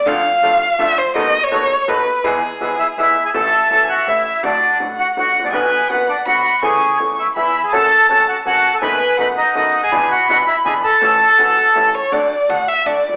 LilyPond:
<<
  \new Staff \with { instrumentName = "Violin" } { \time 3/4 \key e \phrygian \tempo 4 = 164 f''2 e''8 c''8 | dis''8. cis''4~ cis''16 b'4 | gis'2 r4 | \key a \major e''2. |
fis''2. | gis''4 fis''4 b''4 | cis'''2 b''4 | a''2 a''4 |
gis''4 fis''2 | b''2. | a''4 fis''4 a'8 cis''8 | \key d \major d''4 fis''8 e''8 d''4 | }
  \new Staff \with { instrumentName = "Bandoneon" } { \time 3/4 \key e \phrygian << { r2. | r2. | r4. e''8 e''8. gis''16 | \key a \major a''4 a''16. gis''32 fis''8 e''4 |
d''4 r8 fis''8 fis''8. d''16 | b'4 b'8 d''8 fis''4 | gis''4 r8 e''8 e''8. gis''16 | a''4 a''8 fis''8 fis''8. a''16 |
b''4 b''8 dis''8 dis''8. gis''16~ | gis''8 fis''8 fis''8 e''8 gis''8 a''8~ | a''2~ a''8 r8 | \key d \major r2. | } \\ { r2. | r2. | r4. e'8 e'8. gis'16 | a'4 a'8 fis'8 e'4 |
d'4 r8 fis'8 fis'8. d'16 | b4 b8 d'8 fis'4 | gis'4 r8 e'8 e'8. gis'16 | a'4 a'8 fis'8 fis'8. a'16 |
b'4 b'8 dis'8 dis'8. gis'16~ | gis'8 fis'8 fis'8 e'8 gis'8 a'8~ | a'2~ a'8 r8 | r2. | } >> }
  \new Staff \with { instrumentName = "Bandoneon" } { \time 3/4 \key e \phrygian <a d' f'>8 r8 <a d' f'>8 r8 <a d' f'>8 r8 | <a b dis'>8 r8 <a b dis'>8 r8 <a b dis'>8 r8 | <gis b e'>8 r8 <gis b e'>8 r8 <gis b e'>8 r8 | \key a \major r2. |
r2. | r2. | r2. | <a cis' fis'>8 r8 <a cis' fis'>8 r8 <a cis' fis'>8 r8 |
<a b dis'>8 r8 <a b dis'>8 r8 <a b dis'>8 r8 | <gis d' e'>8 r8 <gis d' e'>8 r8 <gis d' e'>8 r8 | <a cis' e'>8 r8 <a cis' e'>8 r8 <a cis' e'>8 r8 | \key d \major <a d' fis'>8 r8 <a d' fis'>8 r8 <a d' fis'>8 r8 | }
  \new Staff \with { instrumentName = "Upright piano" } { \clef bass \time 3/4 \key e \phrygian <d, d f a d' a'>8 r8 <a,, a, f a d' a'>8 r8 <d, d f a d' a'>8 r8 | <dis, dis fis b dis' a'>8 r8 <dis, dis fis b dis' a'>8 r8 <dis, dis fis b dis' a'>8 r8 | <e, e gis b gis'>8 r8 <b,, b, e gis b gis'>8 r8 <e, e gis b gis'>8 r8 | \key a \major <a,, a, e a cis' a'>8 r8 <e,, e, e a cis' a'>8 r8 <a,, a, e a cis' a'>8 r8 |
<a,, a, d fis a fis'>8 r8 <a,, a, d fis a fis'>8 r8 <a,, a, d fis a fis'>8 r32 gis,,32 a,,32 bes,,32 | <b,, b, d fis b fis'>8 r8 <fis,, fis, d fis b fis'>8 r8 <b,, b, d fis b fis'>8 r8 | <e, e a cis' a'>8 r8 <e, e a cis' a'>8 r8 <e, e gis b gis'>8 r8 | <fis, fis a cis' a'>8 r8 <cis, cis fis a cis' a'>8 r8 <fis, fis a cis' a'>8 r8 |
<fis, fis b dis' a'>8 r8 <fis, fis b dis' a'>8 r8 <fis, fis b dis' a'>8 r8 | <e, e b d' gis'>8 r8 <b,, b, e b d' gis'>8 r8 <e, e b d' gis'>8 r8 | <a,, a, e a cis' a'>8 r8 <e,, e, e a cis' a'>8 r8 <a,, a, e a cis' a'>8 r8 | \key d \major <d, d fis a d' a'>8 r8 <a,, a,>8 r8 <d, d>8 r32 gis,,32 r16 | }
  \new Staff \with { instrumentName = "Upright bass" } { \clef bass \time 3/4 \key e \phrygian d,16. r8 r32 a,,16. r8 r32 d,16. r8 r32 | dis,16. r8 r32 dis,16. r8 r32 dis,16. r8 r32 | e,16. r8 r32 b,,16. r8 r32 e,16. r8 r32 | \key a \major a,,16. r8 r32 e,,16. r8 r32 a,,16. r8 r32 |
a,,16. r8 r32 a,,16. r8 r32 a,,16. r16 gis,,32 a,,32 bes,,32 | b,,16. r8 r32 fis,,16. r8 r32 b,,16. r8 r32 | e,16. r8 r32 e,16. r8 r32 e,16. r8 r32 | fis,,16. r8 r32 cis,16. r8 r32 fis,,16. r8 r32 |
fis,,16. r8 r32 fis,,16. r8 r32 fis,,16. r8 r32 | e,16. r8 r32 b,,16. r8 r32 e,16. r8 r32 | a,,16. r8 r32 e,,16. r8 r32 a,,16. r8 r32 | \key d \major d,16. r8 r32 a,,16. r8 r32 d,16. r16 gis,,32 r16 | }
>>